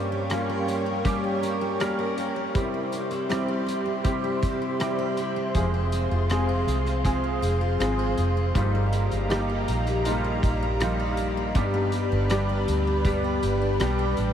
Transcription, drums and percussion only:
0.30 cross-stick, closed hi-hat
0.68 closed hi-hat
1.05 kick, closed hi-hat
1.43 closed hi-hat
1.80 cross-stick, closed hi-hat
2.18 closed hi-hat
2.55 kick, closed hi-hat
2.93 closed hi-hat
3.11 closed hi-hat
3.30 cross-stick, closed hi-hat
3.68 closed hi-hat
4.05 kick, closed hi-hat
4.43 kick, closed hi-hat
4.80 cross-stick, closed hi-hat
5.17 closed hi-hat
5.55 kick, closed hi-hat
5.92 closed hi-hat
6.30 cross-stick, closed hi-hat
6.68 closed hi-hat
6.87 cross-stick, closed hi-hat
7.05 kick, closed hi-hat
7.43 closed hi-hat
7.80 cross-stick, closed hi-hat
8.18 closed hi-hat
8.55 kick, closed hi-hat
8.93 closed hi-hat
9.11 closed hi-hat
9.30 cross-stick, closed hi-hat
9.68 closed hi-hat
9.87 cross-stick, closed hi-hat
10.05 closed hi-hat
10.43 kick, closed hi-hat
10.80 cross-stick, closed hi-hat
11.17 closed hi-hat
11.55 kick, closed hi-hat
11.92 closed hi-hat
12.30 cross-stick, closed hi-hat
12.68 closed hi-hat
13.05 kick, closed hi-hat
13.43 closed hi-hat
13.80 cross-stick, closed hi-hat
14.17 closed hi-hat

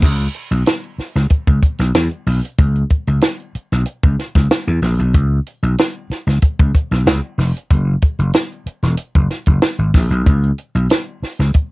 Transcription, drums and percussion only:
0.02 kick, crash
0.20 closed hi-hat
0.34 closed hi-hat
0.52 closed hi-hat
0.66 snare, closed hi-hat
0.84 closed hi-hat
0.99 snare, open hi-hat
1.16 snare, closed hi-hat
1.30 kick, closed hi-hat
1.47 kick
1.63 kick, closed hi-hat
1.79 snare, closed hi-hat
1.95 snare, closed hi-hat
2.11 closed hi-hat
2.26 open hi-hat
2.45 closed hi-hat
2.59 kick, closed hi-hat
2.76 closed hi-hat
2.90 kick, closed hi-hat
3.07 closed hi-hat
3.21 snare, closed hi-hat
3.40 closed hi-hat
3.55 closed hi-hat
3.72 snare, closed hi-hat
3.86 closed hi-hat
4.03 kick, closed hi-hat
4.19 snare, closed hi-hat
4.35 kick, snare, closed hi-hat
4.51 snare, closed hi-hat
4.67 closed hi-hat
4.82 snare, open hi-hat
5.00 closed hi-hat
5.14 kick, closed hi-hat
5.47 closed hi-hat
5.64 closed hi-hat
5.78 snare, closed hi-hat
6.11 snare, closed hi-hat
6.29 snare, closed hi-hat
6.42 kick, closed hi-hat
6.59 kick
6.75 kick, closed hi-hat
6.92 snare, closed hi-hat
7.07 snare, closed hi-hat
7.39 snare, open hi-hat
7.57 closed hi-hat
7.71 kick, closed hi-hat
8.02 kick, closed hi-hat
8.20 closed hi-hat
8.34 snare, closed hi-hat
8.52 closed hi-hat
8.67 closed hi-hat
8.83 snare, closed hi-hat
8.97 closed hi-hat
9.15 kick
9.31 snare, closed hi-hat
9.46 kick, closed hi-hat
9.62 snare, closed hi-hat
9.79 closed hi-hat
9.94 kick, snare, open hi-hat
10.12 closed hi-hat
10.26 kick, closed hi-hat
10.44 closed hi-hat
10.58 closed hi-hat
10.76 closed hi-hat
10.90 snare, closed hi-hat, tambourine
11.23 snare, open hi-hat
11.40 snare, closed hi-hat
11.54 kick, closed hi-hat

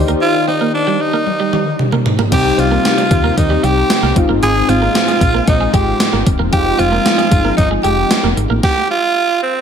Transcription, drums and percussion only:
0.08 closed hi-hat
1.27 high tom
1.53 mid tom
1.79 mid tom
1.92 mid tom
2.06 floor tom
2.19 floor tom
2.32 kick, closed hi-hat, crash
2.59 closed hi-hat
2.85 snare, closed hi-hat
2.98 closed hi-hat
3.11 kick, closed hi-hat
3.37 kick, closed hi-hat
3.64 closed hi-hat
3.90 snare, closed hi-hat
4.16 kick, closed hi-hat
4.43 closed hi-hat
4.69 closed hi-hat
4.95 snare, closed hi-hat
5.08 closed hi-hat
5.21 kick, closed hi-hat
5.47 kick, closed hi-hat
5.74 kick, closed hi-hat
6.00 snare, closed hi-hat
6.27 kick, closed hi-hat
6.53 kick, closed hi-hat
6.79 closed hi-hat
7.06 snare, closed hi-hat
7.19 closed hi-hat
7.32 kick, closed hi-hat
7.58 kick, closed hi-hat
7.84 closed hi-hat
8.11 snare, closed hi-hat
8.37 closed hi-hat
8.63 kick, snare

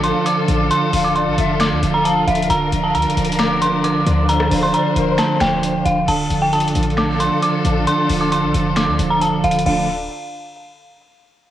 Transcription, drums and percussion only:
0.04 closed hi-hat
0.26 closed hi-hat
0.48 closed hi-hat
0.71 closed hi-hat
0.93 open hi-hat
1.16 closed hi-hat
1.38 closed hi-hat
1.60 finger snap, snare, closed hi-hat
1.83 closed hi-hat
2.05 closed hi-hat
2.28 closed hi-hat
2.35 closed hi-hat
2.42 closed hi-hat
2.50 closed hi-hat
2.72 closed hi-hat
2.95 closed hi-hat
3.02 closed hi-hat
3.10 closed hi-hat
3.17 closed hi-hat
3.25 closed hi-hat
3.32 closed hi-hat
3.39 finger snap, snare, closed hi-hat
3.62 closed hi-hat
3.84 closed hi-hat
4.07 closed hi-hat
4.29 closed hi-hat
4.40 cross-stick
4.51 open hi-hat
4.74 closed hi-hat
4.96 closed hi-hat
5.18 finger snap, snare, closed hi-hat
5.40 finger snap, snare, closed hi-hat
5.63 closed hi-hat
5.86 closed hi-hat
6.08 closed hi-hat, crash
6.30 closed hi-hat
6.53 closed hi-hat
6.60 closed hi-hat
6.68 closed hi-hat
6.75 closed hi-hat
6.83 closed hi-hat
6.90 closed hi-hat
6.97 finger snap, snare, closed hi-hat
7.20 closed hi-hat
7.42 closed hi-hat
7.65 closed hi-hat
7.87 closed hi-hat
8.10 open hi-hat
8.32 closed hi-hat
8.54 closed hi-hat
8.76 finger snap, snare, closed hi-hat
8.99 closed hi-hat
9.22 closed hi-hat
9.44 closed hi-hat
9.51 closed hi-hat
9.59 closed hi-hat
9.66 crash

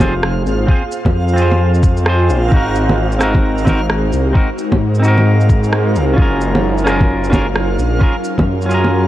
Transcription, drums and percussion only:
0.00 kick, low bongo, shaker
0.23 cross-stick
0.46 shaker
0.68 kick
0.92 shaker
1.05 kick, low bongo
1.28 shaker
1.37 shaker
1.51 low bongo
1.74 shaker
1.83 kick, shaker
1.97 shaker
2.06 cross-stick
2.29 shaker
2.52 kick
2.75 shaker
2.89 low bongo
3.12 shaker
3.21 cross-stick, shaker
3.35 kick, low bongo
3.58 shaker
3.66 kick, low bongo, shaker
3.90 cross-stick
4.12 shaker
4.35 kick
4.58 shaker
4.72 kick, low bongo
4.95 shaker
5.04 shaker
5.18 low bongo
5.41 shaker
5.49 kick, shaker
5.63 shaker
5.73 cross-stick
5.95 shaker
6.18 kick
6.41 shaker
6.55 low bongo
6.78 shaker
6.87 cross-stick, shaker
7.00 kick, low bongo
7.24 shaker
7.32 kick, low bongo, shaker
7.56 cross-stick
7.79 shaker
8.01 kick
8.24 shaker
8.38 kick, low bongo
8.62 shaker
8.70 shaker
8.84 low bongo

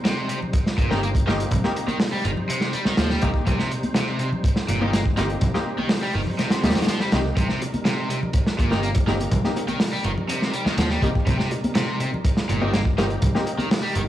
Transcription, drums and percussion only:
0.05 snare, closed hi-hat
0.29 closed hi-hat
0.42 low conga
0.53 kick, closed hi-hat
0.67 snare
0.78 kick, closed hi-hat
0.91 snare, high conga
1.03 closed hi-hat
1.15 kick, closed hi-hat
1.28 snare
1.40 closed hi-hat
1.51 kick, closed hi-hat, low conga
1.64 snare
1.76 closed hi-hat
1.88 closed hi-hat, high conga
2.00 snare, open hi-hat
2.25 closed hi-hat
2.37 low conga
2.50 closed hi-hat
2.61 snare
2.73 closed hi-hat
2.85 snare, high conga
2.97 snare, closed hi-hat
3.10 snare
3.21 kick, closed hi-hat
3.34 kick
3.46 kick, closed hi-hat, low conga
3.59 snare
3.71 closed hi-hat
3.83 closed hi-hat, high conga
3.95 snare, closed hi-hat
4.19 closed hi-hat
4.32 low conga
4.44 kick, closed hi-hat
4.56 snare
4.68 closed hi-hat
4.81 high conga
4.93 snare, closed hi-hat
5.06 kick
5.17 snare, closed hi-hat
5.30 closed hi-hat
5.41 kick, closed hi-hat, low conga
5.54 snare
5.78 high conga
5.89 snare, open hi-hat
6.27 low conga
6.39 snare, closed hi-hat
6.51 snare, closed hi-hat
6.64 snare, closed hi-hat
6.70 snare, closed hi-hat
6.75 snare, closed hi-hat, high conga
6.82 snare, closed hi-hat
6.87 snare, closed hi-hat
7.00 snare
7.12 snare, closed hi-hat
7.37 kick, closed hi-hat, low conga
7.49 snare
7.62 closed hi-hat, high bongo
7.74 closed hi-hat, high conga
7.85 snare, closed hi-hat
8.10 closed hi-hat
8.23 low conga
8.33 kick, closed hi-hat
8.46 snare
8.59 kick, closed hi-hat
8.71 snare, high bongo, high conga
8.83 closed hi-hat
8.95 kick, closed hi-hat, high bongo
9.07 snare
9.20 closed hi-hat, high bongo
9.31 kick, closed hi-hat, low conga
9.44 snare
9.56 closed hi-hat, high bongo
9.68 closed hi-hat, high conga
9.80 snare, open hi-hat
10.04 closed hi-hat
10.18 low conga
10.29 closed hi-hat
10.42 snare
10.54 closed hi-hat
10.66 snare, high conga
10.78 snare, closed hi-hat
10.90 snare, high bongo
11.02 kick, closed hi-hat, high bongo
11.15 kick
11.27 kick, closed hi-hat, low conga
11.39 snare
11.51 closed hi-hat, high bongo
11.64 closed hi-hat, high conga
11.75 snare, closed hi-hat
12.00 closed hi-hat
12.14 low conga
12.25 kick, closed hi-hat
12.37 snare
12.49 closed hi-hat
12.61 high bongo, high conga
12.73 snare, closed hi-hat
12.85 kick, high bongo
12.98 snare, closed hi-hat
13.10 closed hi-hat, high bongo
13.22 kick, closed hi-hat, low conga
13.35 snare
13.46 closed hi-hat, high bongo
13.58 closed hi-hat, high conga
13.71 snare, open hi-hat
13.95 closed hi-hat

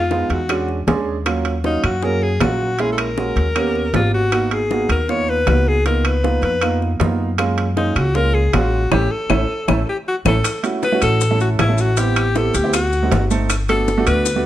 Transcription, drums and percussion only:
0.11 high bongo, low timbale
0.30 high bongo, high timbale
0.49 high bongo, high timbale, claves
0.69 high bongo
0.88 high bongo, low bongo, high timbale, low timbale
1.26 high bongo, high timbale, claves
1.45 high bongo, high timbale
1.64 high bongo, low timbale
1.84 high bongo, high timbale, claves
2.03 high bongo
2.22 high bongo
2.41 high bongo, low bongo, high timbale, low timbale, claves
2.79 high bongo, high timbale
2.98 high bongo, high timbale, claves
3.17 high bongo, low timbale
3.37 high bongo, high timbale
3.56 high bongo, high timbale, claves
3.75 high bongo
3.94 high bongo, low bongo, high timbale, low timbale
4.32 high bongo, high timbale, claves
4.51 high bongo, high timbale
4.71 high bongo, low timbale
4.90 high bongo, high timbale, claves
5.09 high bongo
5.28 high bongo
5.47 high bongo, low bongo, high timbale, low timbale, claves
5.86 high bongo, high timbale
6.05 high bongo, high timbale, claves
6.24 high bongo, low timbale
6.43 high bongo, high timbale
6.61 high bongo, high timbale, claves
6.82 high bongo
7.00 high bongo, low bongo, high timbale, low timbale
7.38 high bongo, high timbale, claves
7.58 high bongo, high timbale
7.77 high bongo, low timbale
7.96 high bongo, high timbale, claves
8.15 high bongo
8.35 high bongo
8.53 high bongo, low bongo, high timbale, low timbale, claves
8.92 low bongo, high timbale, claves
9.30 low bongo, high timbale, claves
9.68 low bongo, high timbale, claves
10.26 low bongo, high timbale, claves
10.44 high bongo, high timbale, claves, maracas
10.64 high bongo, high timbale, maracas
10.83 high bongo, low timbale, maracas
11.02 high bongo, high timbale, claves, maracas
11.21 high bongo, maracas
11.40 high bongo, maracas
11.59 high bongo, low bongo, high timbale, low timbale, claves, maracas
11.78 maracas
11.97 high bongo, high timbale, maracas
12.16 high bongo, high timbale, claves, maracas
12.35 high bongo, low timbale, maracas
12.54 high bongo, high timbale, maracas
12.73 high bongo, high timbale, claves, maracas
12.93 high bongo, maracas
13.12 high bongo, low bongo, high timbale, low timbale, maracas
13.31 maracas
13.50 high bongo, high timbale, claves, maracas
13.69 high bongo, high timbale, maracas
13.88 high bongo, low timbale, maracas
14.07 high bongo, high timbale, claves, maracas
14.26 high bongo, maracas

